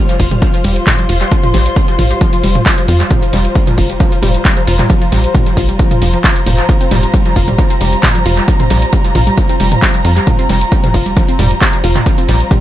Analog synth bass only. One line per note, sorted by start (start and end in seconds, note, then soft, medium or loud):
0.20 0.35 F1 loud
0.64 0.79 F1 loud
1.09 1.24 F1 loud
1.54 1.69 A#1 medium
1.99 2.14 A#1 loud
2.43 2.59 F1 medium
2.88 3.03 F2 loud
3.33 3.48 F1 loud
3.78 3.93 F1 loud
4.23 4.38 F1 loud
4.67 4.82 F1 loud
5.12 5.27 A#1 medium
5.57 5.72 A#1 loud
6.02 6.17 F1 medium
6.46 6.62 F1 loud
6.91 7.06 F1 loud
7.36 7.51 F1 loud
7.81 7.96 F1 loud
8.26 8.41 F1 loud
8.70 8.85 A#1 medium
9.15 9.30 A#1 loud
9.60 9.75 F1 medium
10.05 10.20 F2 loud
10.49 10.65 F1 loud
10.94 11.09 F1 loud
11.39 11.54 F1 loud
11.84 11.99 F1 loud
12.29 12.44 A#1 medium